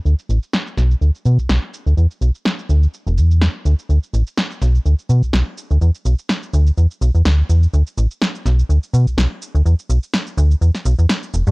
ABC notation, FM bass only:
X:1
M:4/4
L:1/16
Q:"Swing 16ths" 1/4=125
K:Edor
V:1 name="FM bass" clef=bass
D,, z A,,, z3 B,,, z D,, z B,, B,,, B,,, z2 D,, | E,, z B,,, z3 D,, z2 E,,, E,,3 z D,, z | D,, z A,,, z3 B,,, z D,, z B,, B,,, B,,, z2 D,, | E,, z B,,, z3 D,, z E,, z B,,, E,, D,, z E,, z |
D,, z A,,, z3 B,,, z D,, z B,, B,,, B,,, z2 D,, | E,, z B,,, z3 D,, z E,, z B,,, E,, z2 E,,, G,, |]